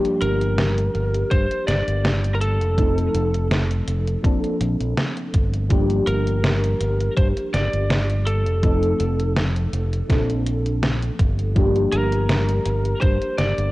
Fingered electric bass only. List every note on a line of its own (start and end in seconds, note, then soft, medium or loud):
0.22 0.88 G1 loud
0.95 1.22 G1 medium
1.32 1.46 G2 medium
1.68 1.82 G1 medium
1.88 2.61 G1 medium
2.61 3.07 F1 medium
3.14 3.80 F1 loud
3.88 4.15 F1 loud
4.61 4.75 A#1 loud
4.80 4.93 A#1 medium
5.34 6.00 G1 loud
6.07 6.73 G1 loud
6.80 7.08 G1 medium
7.17 7.31 G2 medium
7.54 7.68 G1 medium
7.73 8.46 G1 medium
8.46 8.93 F1 medium
9.00 9.66 F1 loud
9.73 10.00 F1 medium
10.10 11.09 A#1 loud
11.19 11.85 G1 medium
11.93 12.58 G1 loud
12.66 12.93 G1 medium
13.02 13.17 G2 medium
13.39 13.53 G1 medium
13.58 13.72 G1 medium